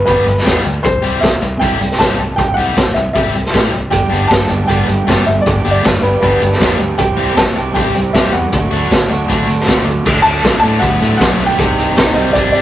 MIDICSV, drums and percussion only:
0, 0, Header, 1, 2, 480
1, 0, Start_track
1, 0, Key_signature, 1, "major"
1, 0, Tempo, 383632
1, 1057, Time_signature, 4, 2, 24, 8
1, 15786, End_track
2, 0, Start_track
2, 0, Title_t, "Drums"
2, 91, Note_on_c, 9, 42, 67
2, 98, Note_on_c, 9, 36, 88
2, 216, Note_off_c, 9, 42, 0
2, 223, Note_off_c, 9, 36, 0
2, 337, Note_on_c, 9, 42, 49
2, 462, Note_off_c, 9, 42, 0
2, 468, Note_on_c, 9, 38, 30
2, 579, Note_on_c, 9, 42, 68
2, 580, Note_on_c, 9, 36, 96
2, 585, Note_off_c, 9, 38, 0
2, 585, Note_on_c, 9, 38, 93
2, 704, Note_off_c, 9, 42, 0
2, 705, Note_off_c, 9, 36, 0
2, 710, Note_off_c, 9, 38, 0
2, 821, Note_on_c, 9, 42, 57
2, 946, Note_off_c, 9, 42, 0
2, 1059, Note_on_c, 9, 42, 80
2, 1060, Note_on_c, 9, 36, 115
2, 1185, Note_off_c, 9, 36, 0
2, 1185, Note_off_c, 9, 42, 0
2, 1295, Note_on_c, 9, 42, 58
2, 1420, Note_off_c, 9, 42, 0
2, 1540, Note_on_c, 9, 36, 110
2, 1544, Note_on_c, 9, 42, 78
2, 1550, Note_on_c, 9, 38, 99
2, 1666, Note_off_c, 9, 36, 0
2, 1669, Note_off_c, 9, 42, 0
2, 1675, Note_off_c, 9, 38, 0
2, 1787, Note_on_c, 9, 42, 66
2, 1912, Note_off_c, 9, 42, 0
2, 2017, Note_on_c, 9, 42, 70
2, 2021, Note_on_c, 9, 36, 87
2, 2143, Note_off_c, 9, 42, 0
2, 2146, Note_off_c, 9, 36, 0
2, 2263, Note_on_c, 9, 42, 59
2, 2388, Note_off_c, 9, 42, 0
2, 2388, Note_on_c, 9, 38, 30
2, 2497, Note_on_c, 9, 42, 74
2, 2499, Note_on_c, 9, 36, 94
2, 2504, Note_off_c, 9, 38, 0
2, 2504, Note_on_c, 9, 38, 90
2, 2623, Note_off_c, 9, 42, 0
2, 2624, Note_off_c, 9, 36, 0
2, 2629, Note_off_c, 9, 38, 0
2, 2738, Note_on_c, 9, 42, 62
2, 2864, Note_off_c, 9, 42, 0
2, 2979, Note_on_c, 9, 42, 83
2, 2980, Note_on_c, 9, 36, 110
2, 3104, Note_off_c, 9, 42, 0
2, 3105, Note_off_c, 9, 36, 0
2, 3219, Note_on_c, 9, 42, 56
2, 3344, Note_off_c, 9, 42, 0
2, 3465, Note_on_c, 9, 36, 103
2, 3465, Note_on_c, 9, 42, 75
2, 3471, Note_on_c, 9, 38, 100
2, 3590, Note_off_c, 9, 36, 0
2, 3590, Note_off_c, 9, 42, 0
2, 3596, Note_off_c, 9, 38, 0
2, 3716, Note_on_c, 9, 42, 64
2, 3841, Note_off_c, 9, 42, 0
2, 3949, Note_on_c, 9, 36, 89
2, 3950, Note_on_c, 9, 42, 70
2, 4074, Note_off_c, 9, 36, 0
2, 4076, Note_off_c, 9, 42, 0
2, 4196, Note_on_c, 9, 42, 56
2, 4321, Note_off_c, 9, 42, 0
2, 4322, Note_on_c, 9, 38, 32
2, 4430, Note_on_c, 9, 36, 93
2, 4439, Note_on_c, 9, 42, 66
2, 4445, Note_off_c, 9, 38, 0
2, 4445, Note_on_c, 9, 38, 92
2, 4555, Note_off_c, 9, 36, 0
2, 4564, Note_off_c, 9, 42, 0
2, 4570, Note_off_c, 9, 38, 0
2, 4676, Note_on_c, 9, 42, 57
2, 4801, Note_off_c, 9, 42, 0
2, 4910, Note_on_c, 9, 36, 106
2, 4914, Note_on_c, 9, 42, 75
2, 5036, Note_off_c, 9, 36, 0
2, 5040, Note_off_c, 9, 42, 0
2, 5159, Note_on_c, 9, 42, 56
2, 5284, Note_off_c, 9, 42, 0
2, 5393, Note_on_c, 9, 36, 108
2, 5395, Note_on_c, 9, 42, 80
2, 5401, Note_on_c, 9, 38, 105
2, 5518, Note_off_c, 9, 36, 0
2, 5520, Note_off_c, 9, 42, 0
2, 5526, Note_off_c, 9, 38, 0
2, 5630, Note_on_c, 9, 42, 59
2, 5755, Note_off_c, 9, 42, 0
2, 5870, Note_on_c, 9, 42, 70
2, 5874, Note_on_c, 9, 36, 90
2, 5995, Note_off_c, 9, 42, 0
2, 5999, Note_off_c, 9, 36, 0
2, 6115, Note_on_c, 9, 42, 56
2, 6240, Note_off_c, 9, 42, 0
2, 6357, Note_on_c, 9, 36, 99
2, 6363, Note_on_c, 9, 42, 72
2, 6369, Note_on_c, 9, 38, 91
2, 6482, Note_off_c, 9, 36, 0
2, 6488, Note_off_c, 9, 42, 0
2, 6495, Note_off_c, 9, 38, 0
2, 6601, Note_on_c, 9, 42, 59
2, 6726, Note_off_c, 9, 42, 0
2, 6836, Note_on_c, 9, 36, 110
2, 6836, Note_on_c, 9, 42, 84
2, 6961, Note_off_c, 9, 42, 0
2, 6962, Note_off_c, 9, 36, 0
2, 7075, Note_on_c, 9, 42, 60
2, 7200, Note_off_c, 9, 42, 0
2, 7314, Note_on_c, 9, 36, 106
2, 7317, Note_on_c, 9, 42, 87
2, 7323, Note_on_c, 9, 38, 101
2, 7439, Note_off_c, 9, 36, 0
2, 7442, Note_off_c, 9, 42, 0
2, 7448, Note_off_c, 9, 38, 0
2, 7553, Note_on_c, 9, 42, 58
2, 7678, Note_off_c, 9, 42, 0
2, 7787, Note_on_c, 9, 42, 74
2, 7792, Note_on_c, 9, 36, 88
2, 7913, Note_off_c, 9, 42, 0
2, 7917, Note_off_c, 9, 36, 0
2, 8021, Note_on_c, 9, 42, 57
2, 8146, Note_off_c, 9, 42, 0
2, 8161, Note_on_c, 9, 38, 30
2, 8267, Note_on_c, 9, 42, 70
2, 8268, Note_on_c, 9, 36, 93
2, 8273, Note_off_c, 9, 38, 0
2, 8273, Note_on_c, 9, 38, 95
2, 8392, Note_off_c, 9, 42, 0
2, 8393, Note_off_c, 9, 36, 0
2, 8398, Note_off_c, 9, 38, 0
2, 8501, Note_on_c, 9, 42, 52
2, 8626, Note_off_c, 9, 42, 0
2, 8735, Note_on_c, 9, 42, 82
2, 8745, Note_on_c, 9, 36, 105
2, 8860, Note_off_c, 9, 42, 0
2, 8870, Note_off_c, 9, 36, 0
2, 8988, Note_on_c, 9, 42, 51
2, 9113, Note_off_c, 9, 42, 0
2, 9218, Note_on_c, 9, 42, 69
2, 9224, Note_on_c, 9, 38, 105
2, 9228, Note_on_c, 9, 36, 103
2, 9343, Note_off_c, 9, 42, 0
2, 9350, Note_off_c, 9, 38, 0
2, 9353, Note_off_c, 9, 36, 0
2, 9466, Note_on_c, 9, 42, 58
2, 9591, Note_off_c, 9, 42, 0
2, 9711, Note_on_c, 9, 42, 66
2, 9712, Note_on_c, 9, 36, 89
2, 9836, Note_off_c, 9, 42, 0
2, 9837, Note_off_c, 9, 36, 0
2, 9956, Note_on_c, 9, 42, 57
2, 10081, Note_off_c, 9, 42, 0
2, 10192, Note_on_c, 9, 36, 99
2, 10192, Note_on_c, 9, 42, 67
2, 10198, Note_on_c, 9, 38, 91
2, 10317, Note_off_c, 9, 42, 0
2, 10318, Note_off_c, 9, 36, 0
2, 10323, Note_off_c, 9, 38, 0
2, 10434, Note_on_c, 9, 42, 58
2, 10559, Note_off_c, 9, 42, 0
2, 10665, Note_on_c, 9, 42, 79
2, 10672, Note_on_c, 9, 36, 105
2, 10790, Note_off_c, 9, 42, 0
2, 10797, Note_off_c, 9, 36, 0
2, 10917, Note_on_c, 9, 42, 59
2, 11042, Note_off_c, 9, 42, 0
2, 11153, Note_on_c, 9, 36, 105
2, 11153, Note_on_c, 9, 42, 81
2, 11159, Note_on_c, 9, 38, 107
2, 11278, Note_off_c, 9, 36, 0
2, 11278, Note_off_c, 9, 42, 0
2, 11284, Note_off_c, 9, 38, 0
2, 11397, Note_on_c, 9, 42, 65
2, 11522, Note_off_c, 9, 42, 0
2, 11628, Note_on_c, 9, 42, 63
2, 11633, Note_on_c, 9, 36, 87
2, 11753, Note_off_c, 9, 42, 0
2, 11758, Note_off_c, 9, 36, 0
2, 11878, Note_on_c, 9, 42, 58
2, 12003, Note_off_c, 9, 42, 0
2, 12009, Note_on_c, 9, 38, 30
2, 12112, Note_on_c, 9, 36, 95
2, 12112, Note_on_c, 9, 42, 76
2, 12118, Note_off_c, 9, 38, 0
2, 12118, Note_on_c, 9, 38, 90
2, 12237, Note_off_c, 9, 36, 0
2, 12237, Note_off_c, 9, 42, 0
2, 12243, Note_off_c, 9, 38, 0
2, 12358, Note_on_c, 9, 42, 55
2, 12483, Note_off_c, 9, 42, 0
2, 12589, Note_on_c, 9, 36, 110
2, 12591, Note_on_c, 9, 49, 103
2, 12714, Note_off_c, 9, 36, 0
2, 12716, Note_off_c, 9, 49, 0
2, 12830, Note_on_c, 9, 42, 64
2, 12955, Note_off_c, 9, 42, 0
2, 13062, Note_on_c, 9, 36, 108
2, 13066, Note_on_c, 9, 42, 86
2, 13073, Note_on_c, 9, 38, 108
2, 13188, Note_off_c, 9, 36, 0
2, 13191, Note_off_c, 9, 42, 0
2, 13198, Note_off_c, 9, 38, 0
2, 13306, Note_on_c, 9, 42, 71
2, 13431, Note_off_c, 9, 42, 0
2, 13531, Note_on_c, 9, 42, 75
2, 13537, Note_on_c, 9, 36, 101
2, 13656, Note_off_c, 9, 42, 0
2, 13662, Note_off_c, 9, 36, 0
2, 13784, Note_on_c, 9, 42, 65
2, 13909, Note_off_c, 9, 42, 0
2, 14019, Note_on_c, 9, 36, 101
2, 14021, Note_on_c, 9, 42, 82
2, 14027, Note_on_c, 9, 38, 101
2, 14144, Note_off_c, 9, 36, 0
2, 14146, Note_off_c, 9, 42, 0
2, 14152, Note_off_c, 9, 38, 0
2, 14266, Note_on_c, 9, 42, 67
2, 14392, Note_off_c, 9, 42, 0
2, 14499, Note_on_c, 9, 36, 116
2, 14501, Note_on_c, 9, 42, 95
2, 14624, Note_off_c, 9, 36, 0
2, 14626, Note_off_c, 9, 42, 0
2, 14737, Note_on_c, 9, 42, 66
2, 14862, Note_off_c, 9, 42, 0
2, 14978, Note_on_c, 9, 36, 108
2, 14979, Note_on_c, 9, 42, 90
2, 14985, Note_on_c, 9, 38, 114
2, 15103, Note_off_c, 9, 36, 0
2, 15104, Note_off_c, 9, 42, 0
2, 15111, Note_off_c, 9, 38, 0
2, 15221, Note_on_c, 9, 42, 71
2, 15346, Note_off_c, 9, 42, 0
2, 15457, Note_on_c, 9, 36, 96
2, 15458, Note_on_c, 9, 42, 83
2, 15582, Note_off_c, 9, 36, 0
2, 15583, Note_off_c, 9, 42, 0
2, 15694, Note_on_c, 9, 42, 62
2, 15786, Note_off_c, 9, 42, 0
2, 15786, End_track
0, 0, End_of_file